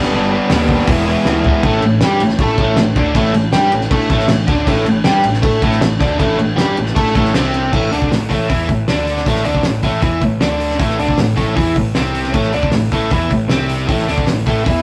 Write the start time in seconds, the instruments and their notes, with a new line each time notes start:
Already playing: overdriven electric guitar D3 G3 B3 D4
0.03 snare
0.11 picked electric bass G1, overdriven electric guitar G2 D3 G3 B3
0.15 overdriven electric guitar D4
0.31 overdriven electric guitar B3 D4
0.35 overdriven electric guitar G3
0.49 picked electric bass D#2, overdriven electric guitar G2 D3 G3 B3 D4, snare, open hi-hat
0.69 kick
0.87 picked electric bass E1, overdriven electric guitar E3 G#3 B3, kick, open hi-hat
0.91 overdriven electric guitar E4
1.07 overdriven electric guitar G#3 B3 E4
1.25 picked electric bass D2, overdriven electric guitar E3 G#3 B3, snare
1.30 overdriven electric guitar E4
1.44 overdriven electric guitar B3 E4, floor tom
1.48 overdriven electric guitar G#3
1.63 picked electric bass A1, overdriven electric guitar A2 A3, kick, crash
1.82 picked electric bass A1, overdriven electric guitar A2, crash
2.01 picked electric bass G2, overdriven electric guitar G3 G4, snare, crash
2.20 picked electric bass A1, overdriven electric guitar A2, crash
2.29 snare
2.39 picked electric bass A2, overdriven electric guitar A3 A4, kick, crash
2.58 picked electric bass A1, overdriven electric guitar A2 A3, kick, crash
2.77 picked electric bass A1, overdriven electric guitar A2, snare, crash
2.96 picked electric bass D2, overdriven electric guitar D3 D4, kick, crash
3.14 picked electric bass A1, overdriven electric guitar A2 A3, kick, crash
3.34 picked electric bass A1, overdriven electric guitar A2, crash
3.53 picked electric bass G2, overdriven electric guitar G3 G4, snare, crash
3.72 picked electric bass A1, overdriven electric guitar A2, crash
3.81 snare
3.91 picked electric bass A2, overdriven electric guitar A3 A4, kick, crash
4.09 picked electric bass A1, overdriven electric guitar A2 A3, kick, crash
4.20 snare
4.28 picked electric bass A1, overdriven electric guitar A2, snare, crash
4.47 picked electric bass D2, overdriven electric guitar D3 D4, kick, crash
4.67 picked electric bass A1, overdriven electric guitar A2 A3, kick, crash
4.86 picked electric bass A1, overdriven electric guitar A2, crash
5.04 picked electric bass G2, overdriven electric guitar G3 G4, snare, crash
5.24 picked electric bass A1, overdriven electric guitar A2, crash
5.34 snare
5.42 picked electric bass A2, overdriven electric guitar A3 A4, kick, crash
5.62 picked electric bass A1, overdriven electric guitar A2 A3, kick, crash
5.72 snare
5.81 picked electric bass A1, overdriven electric guitar A2, snare, crash
5.99 picked electric bass D2, overdriven electric guitar D3 D4, kick, crash
6.18 picked electric bass A1, overdriven electric guitar A2 A3, kick, crash
6.38 picked electric bass A1, overdriven electric guitar A2, crash
6.56 picked electric bass G2, overdriven electric guitar G3 G4, snare, crash
6.76 picked electric bass A1, overdriven electric guitar A2, crash
6.86 snare
6.95 picked electric bass A2, overdriven electric guitar A3 A4, kick, crash
7.14 picked electric bass A1, overdriven electric guitar A2 A3, kick, crash
7.25 snare
7.34 picked electric bass C2, overdriven electric guitar C3 C4, snare, crash
7.54 crash
7.73 picked electric bass A1, overdriven electric guitar A2 A3, kick, crash
7.92 picked electric bass D2, overdriven electric guitar D3 D4, open hi-hat
8.02 kick
8.10 picked electric bass A1, overdriven electric guitar A2, snare, open hi-hat
8.29 picked electric bass A1, overdriven electric guitar A2 A3, kick, open hi-hat
8.49 picked electric bass E2, overdriven electric guitar E3 E4, kick, open hi-hat
8.69 picked electric bass A1, overdriven electric guitar A2, kick, open hi-hat
8.88 picked electric bass D2, overdriven electric guitar D3 D4, snare, open hi-hat
9.07 open hi-hat
9.17 snare
9.26 picked electric bass A1, overdriven electric guitar A2 A3, kick, open hi-hat
9.35 snare
9.45 picked electric bass D2, overdriven electric guitar D3 D4, open hi-hat
9.55 kick
9.63 picked electric bass A1, overdriven electric guitar A2, snare, open hi-hat
9.83 picked electric bass A1, overdriven electric guitar A2 A3, kick, open hi-hat
10.02 picked electric bass E2, overdriven electric guitar E3 E4, kick, open hi-hat
10.21 picked electric bass A1, overdriven electric guitar A2, kick, open hi-hat
10.41 picked electric bass D2, overdriven electric guitar D3 D4, snare, open hi-hat
10.60 open hi-hat
10.70 snare
10.79 picked electric bass A1, overdriven electric guitar A2 A3, kick, open hi-hat
10.89 snare
10.99 picked electric bass D2, overdriven electric guitar D3 D4, open hi-hat
11.09 kick
11.18 picked electric bass A1, overdriven electric guitar A2, snare, open hi-hat
11.36 picked electric bass A1, overdriven electric guitar A2 A3, kick, open hi-hat
11.55 picked electric bass E2, overdriven electric guitar E3 E4, kick, open hi-hat
11.75 picked electric bass A1, overdriven electric guitar A2, kick, open hi-hat
11.95 picked electric bass C2, overdriven electric guitar C3 C4, snare, open hi-hat
12.15 open hi-hat
12.24 snare
12.33 picked electric bass A1, overdriven electric guitar A2 A3, kick, open hi-hat
12.43 snare
12.53 picked electric bass D2, overdriven electric guitar D3 D4, open hi-hat
12.63 kick
12.72 picked electric bass A1, overdriven electric guitar A2, snare, open hi-hat
12.92 picked electric bass A1, overdriven electric guitar A2 A3, kick, open hi-hat
13.11 picked electric bass E2, overdriven electric guitar E3 E4, kick, open hi-hat
13.30 picked electric bass A1, overdriven electric guitar A2, kick, open hi-hat
13.49 picked electric bass C2, overdriven electric guitar C3 C4, snare, open hi-hat
13.69 open hi-hat
13.88 picked electric bass A1, overdriven electric guitar A2 A3, kick, open hi-hat
13.99 snare
14.08 picked electric bass D2, overdriven electric guitar D3 D4, open hi-hat
14.18 kick
14.27 picked electric bass A1, overdriven electric guitar A2, snare, open hi-hat
14.46 picked electric bass A1, overdriven electric guitar A2 A3, kick, open hi-hat
14.64 picked electric bass E2, overdriven electric guitar E3 E4, kick, open hi-hat